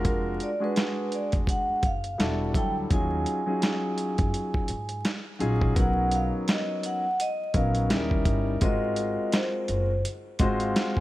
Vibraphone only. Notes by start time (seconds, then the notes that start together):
0.07 A#4
0.43 D5
0.64 B4
1.14 D5
1.50 F#5
1.86 F5
2.21 E5
2.57 G5
2.93 G#5
5.80 F#5
6.15 F5
6.50 D#5
6.86 F#5
7.21 D#5
7.56 F5
8.63 D#5
9.35 C5